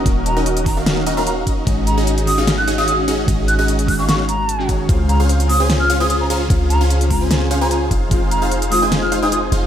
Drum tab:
HH |x-x-xxo-x-x-x-x-|x-x-xxo-x-x-x-x-|x-x-xxo-x-x-x-x-|x-x-xxo-x-x-x-x-|
SD |--------o-------|--------o-------|--------o-------|--------o-------|
BD |o-----o-------o-|o---------------|o-----o-------o-|o---------------|

HH |x-x-xxo-x-x-x-x-|x-x-xxo-x-x-x-x-|
SD |--------o-------|--------o-------|
BD |o-----o-------o-|o---------------|